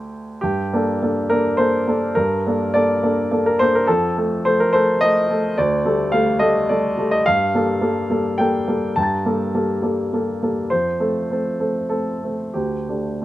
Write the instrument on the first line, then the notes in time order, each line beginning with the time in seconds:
grand piano
Already playing: D2 A3 D4 G4 A4
0.41 G2 G4
0.74 A#3 D4 A4
1.03 A#3 D4 A4
1.30 A#3 D4 A4 A#4
1.57 A#3 D4 A4 C5
1.88 A#3 D4 A4
2.15 G2 A#4
2.47 A#3 D4 A4
2.74 A#3 D4 A4 D5
3.03 A#3 D4 A4
3.32 A#3 D4 A4
3.46 A#4
3.59 A#3 D4 A4 C5
3.75 A#4
3.87 F2 A4
4.18 A3 A4
4.45 A3 A4 C5
4.60 A#4
4.73 A3 A4 C5
5.01 A3 A4 D#5
5.30 A3 A4
5.58 D2 D5
5.85 G3 A3 A4
6.12 G3 A3 A4 F5
6.39 G3 A3 A4 D#5
6.69 G3 A3 A4 D5
6.97 G3 A3 A4
7.11 D#5
7.26 G2 F5
7.55 G3 A#3 A4
7.81 G3 A#3 A4
8.10 G3 A#3 A4
8.38 G3 A#3 A4 G5
8.68 G3 A#3 A4
8.96 G2 G5 A5
9.00 A#5 A6
9.26 G3 A#3 A4
9.54 G3 A#3 A4
9.82 G3 A#3 A4
10.13 G3 A#3 A4
10.43 G3 A#3 A4
10.70 F2 C5
11.00 A3 C4 A4
11.31 A3 C4 A4
11.60 A3 C4 A4
11.90 A3 C4 A4
12.23 A3 C4 A4
12.54 D2 G4
12.89 A3 D4 G4
13.21 A3